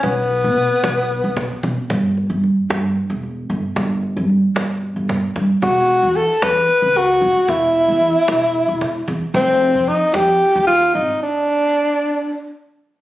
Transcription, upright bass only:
X:1
M:7/8
L:1/16
Q:1/4=113
K:Edor
V:1 name="Upright bass" clef=bass
B,,,3 B,,2 z B,,,3 B,,,2 z B,, z | G,,,3 G,,2 z G,,2 z E,,,3 G,,, z | G,,,3 G,,2 z G,,,3 G,,,2 z G,, z | E,,,3 E,,2 z E,,2 z C,,3 E,,, z |
E,,,3 E,,2 z E,,,3 E,,,2 z E,, z | =F,,,3 =F,,2 z F,,2 z _E,,3 _A,,, z | z12 z2 |]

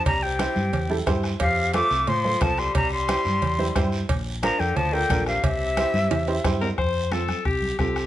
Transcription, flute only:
X:1
M:4/4
L:1/8
Q:1/4=178
K:F
V:1 name="Flute"
b g4 z3 | f2 d'2 c'2 a c' | b c'6 z | z2 b g a g2 f |
e6 z2 | z8 |]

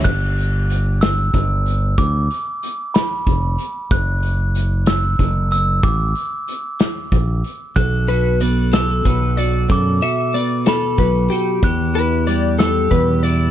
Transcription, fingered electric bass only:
X:1
M:6/8
L:1/8
Q:3/8=62
K:G
V:1 name="Fingered electric bass" clef=bass
G,,,4 G,,,2 | D,, z3 =F,,, z | F,,,4 F,,,2 | A,,, z3 _B,,, z |
B,,,4 B,,,2 | F,, z3 B,,, z | E,,4 E,,2 |]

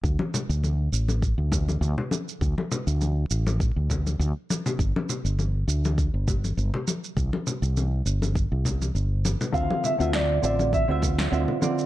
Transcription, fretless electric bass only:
X:1
M:4/4
L:1/16
Q:"Swing 16ths" 1/4=101
K:Dm
V:1 name="Fretless electric bass" clef=bass
D,, z2 D,,3 A,,,3 D,,3 D,, z3 | D,, z2 D,,3 A,,,3 D,,3 D,, z3 | G,,, z2 G,,,3 D,,3 G,,,3 G,,, z3 | C,, z2 C,,3 G,,,3 C,,3 G,,,3 z |
D,, z2 D,,3 A,,,3 D,,3 D,, z3 |]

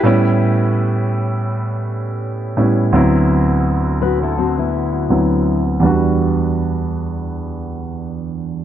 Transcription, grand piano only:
X:1
M:4/4
L:1/16
Q:"Swing 16ths" 1/4=83
K:Em
V:1 name="Grand piano"
G z12 z3 | z16 | z16 |]
V:2 name="Grand piano"
[A,,G,B,^CE]12- [A,,G,B,CE]2 [A,,G,B,CE]2 | [D,,F,B,CE]12 [D,,F,B,CE]4 | [E,,G,B,DF]16 |]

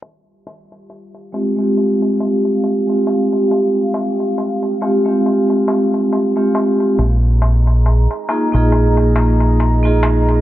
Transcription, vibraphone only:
X:1
M:4/4
L:1/16
Q:"Swing 16ths" 1/4=69
K:Fm
V:1 name="Vibraphone"
z6 [A,CFG] [A,CFG]6 [A,CFG]3- | [A,CFG]6 [A,CFG] [A,CFG]6 [A,CFG]3 | z6 [B,EFA] [B,EFA]6 [B,EFA]3 |]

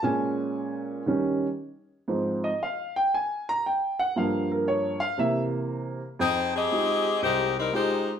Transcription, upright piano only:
X:1
M:4/4
L:1/8
Q:"Swing" 1/4=117
K:Fm
V:1 name="Upright piano"
a4 z4 | z e f g a b g _g | f B d f =e z3 | z8 |]
V:2 name="Upright piano" clef=bass
[B,,A,D]4 [E,G,D] z3 | [A,,F,C] z6 z | [G,,F,B,]3 z [C,=E,B,]3 z | F,,2 [A,EFG] z C,,2 [A,EFG] z |]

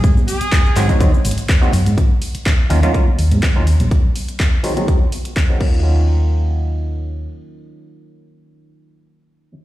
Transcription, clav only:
X:1
M:4/4
L:1/16
Q:"Swing 16ths" 1/4=124
K:Ebdor
V:1 name="Clav" clef=bass
z6 [E,G,A,CG] [E,G,A,CG] [E,G,A,CG] z4 [E,G,A,CG] z2 | z6 [E,G,B,DF] [E,G,B,DF] [E,G,B,DF] z4 [E,G,B,DF] z2 | z6 [E,G,A,CG] [E,G,A,CG] [E,G,A,CG] z4 [E,G,A,CG] [E,G,B,DF]2- | [E,G,B,DF]16- |
[E,G,B,DF]16 |]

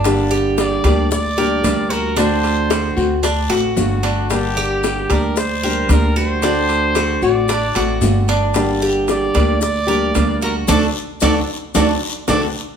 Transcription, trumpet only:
X:1
M:4/4
L:1/8
Q:1/4=113
K:Gm
V:1 name="Trumpet"
z2 d2 d3 B | c4 z2 ^F2 | G3 B c2 B c- | c3 d4 z |
z2 d2 d3 B | d z d z d z d z |]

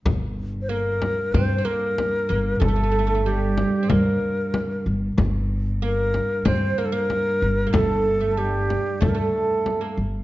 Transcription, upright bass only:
X:1
M:4/4
L:1/8
Q:1/4=94
K:Gm
V:1 name="Upright bass" clef=bass
G,,,4 G,, z2 G,,, | G,,,4 G,, z2 G,,, | G,,,4 G,, z2 G,,, | G,,,4 G,, z2 G,,, |]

